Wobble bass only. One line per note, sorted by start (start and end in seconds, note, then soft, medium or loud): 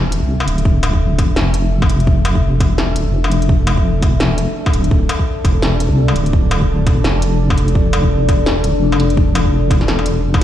0.00 0.21 E1 medium
0.23 0.47 C2 loud
0.48 1.20 D1 medium
1.18 1.35 E1 medium
1.36 2.62 F1 loud
2.60 2.95 E1 medium
2.96 3.06 D1 loud
3.06 4.04 F1 medium
4.02 4.47 E1 medium
4.73 4.90 D1 medium
4.91 5.08 D1 loud
5.45 5.89 E1 medium
5.90 6.14 C2 loud
6.15 6.88 D1 medium
6.86 7.03 E1 medium
7.04 8.30 F1 loud
8.29 8.63 E1 medium
8.64 8.74 D1 loud
8.74 9.72 F1 medium
9.70 10.25 E1 medium
10.24 10.43 F1 medium